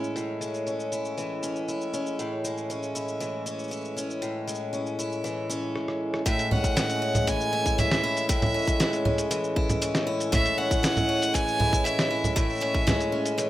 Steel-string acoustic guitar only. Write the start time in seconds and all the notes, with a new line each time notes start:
Already playing: A2 E3 G#3 C#4 E4
0.16 A2
0.41 G#3
0.67 C#4
0.92 E4
1.18 E3
1.43 C#4
1.68 E4
1.94 C#4
2.19 A2
2.45 G#3
2.70 C#4
2.95 E4
3.20 E3
3.46 C#4
3.71 E4
3.97 C#4
4.22 A2
4.47 G#3
4.73 C#4
4.99 E4
5.24 E3
5.50 C#4
6.26 A2
6.51 C#4
6.77 G#3
7.02 C#4
7.27 E3
7.53 E4
7.78 C#4
8.04 E4
8.29 A2
8.54 C#4
8.80 G#3
9.05 C#4
9.31 E3
9.56 E4
9.82 C#4
10.07 E4
10.32 A2
10.58 C#4
10.83 G#3
11.09 C#4
11.34 E3
11.60 E4
11.85 C#4
12.11 E4
12.36 A2
12.61 C#4
12.87 G#3
13.12 C#4
13.38 E3